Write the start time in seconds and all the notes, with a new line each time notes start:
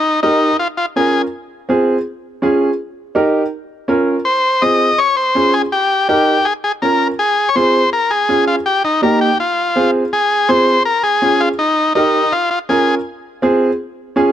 Already playing: D#4
0.23 D#4 G4 A#4
0.59 F4
0.77 F4
0.96 C#4 F4 G#4 A#4
1.69 C4 F4 G#4
2.42 C#4 F4 G#4
3.15 D#4 G4 A#4
3.88 C#4 F4 A#4
4.25 C5
4.62 C4 F4 G#4 D#5
4.98 C#5
5.17 C5
5.35 C#4 F4 G#4
5.54 G#4
5.72 G4
6.09 D#4 G4 A#4
6.45 G#4
6.64 G#4
6.82 C#4 F4 A#4
7.19 G#4
7.49 C#5
7.55 C4 F4 G#4 C5
7.93 A#4
8.11 G#4
8.29 C#4 F4 G#4
8.47 F4
8.66 G4
8.84 D#4
9.02 A#3 D#4 G4 A#4
9.21 G4
9.40 F4
9.76 C4 F4 G#4
10.13 G#4
10.49 C4 F4 G#4 C5
10.85 A#4
11.03 G#4
11.22 C#4 F4 G#4
11.40 F4
11.59 D#4
11.95 D#4 G4 A#4
12.32 F4
12.51 F4
12.69 C#4 F4 G#4 A#4
13.42 C4 F4 G#4
14.16 C#4 F4 G#4